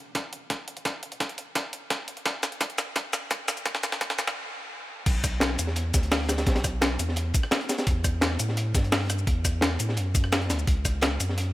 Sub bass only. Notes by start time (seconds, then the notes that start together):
5.06 B1
5.59 E2
5.94 D2
6.47 B1
6.99 E2
7.87 E2
8.40 A2
8.75 G2
9.27 E2
9.80 A2
9.97 F#2
10.50 D2
10.67 C#2
11.20 F#2